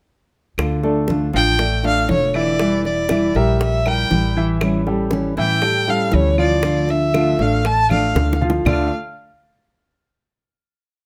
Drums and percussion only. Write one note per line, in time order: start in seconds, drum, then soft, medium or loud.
0.58 high bongo medium
0.58 high conga soft
0.58 claves medium
0.83 high bongo soft
0.83 high conga soft
1.08 high bongo medium
1.08 high conga medium
1.33 high bongo soft
1.33 high conga soft
1.59 high bongo medium
1.59 high conga soft
1.59 claves medium
1.84 high bongo soft
1.84 high conga soft
2.09 high bongo soft
2.09 low bongo medium
2.09 high conga medium
2.34 high conga soft
2.34 claves medium
2.59 high bongo medium
2.59 high conga soft
2.85 high bongo soft
2.85 high conga soft
3.09 high bongo medium
3.09 high conga medium
3.09 claves medium
3.35 high bongo soft
3.61 high bongo medium
3.61 high conga soft
3.86 high bongo soft
3.86 high conga soft
3.86 claves medium
4.11 high bongo soft
4.11 low bongo medium
4.11 high conga medium
4.61 high bongo medium
4.61 high conga soft
4.61 claves medium
4.87 high bongo soft
4.87 high conga soft
5.11 high bongo medium
5.11 high conga medium
5.37 high bongo soft
5.37 high conga soft
5.62 high bongo medium
5.62 high conga soft
5.62 claves medium
5.88 high bongo soft
5.88 high conga soft
6.12 high bongo soft
6.12 low bongo medium
6.12 high conga medium
6.38 high conga soft
6.38 claves medium
6.63 high bongo medium
6.63 high conga soft
6.89 high bongo soft
6.89 high conga soft
7.14 high bongo medium
7.14 high conga soft
7.14 claves medium
7.39 high bongo soft
7.65 high bongo medium
7.65 high conga soft
7.90 high bongo soft
7.90 high conga medium
7.90 claves medium
8.16 high bongo medium
8.16 low conga medium
8.33 low bongo medium
8.42 low conga medium
8.50 low bongo medium
8.66 low bongo medium
8.66 low conga loud
8.66 claves medium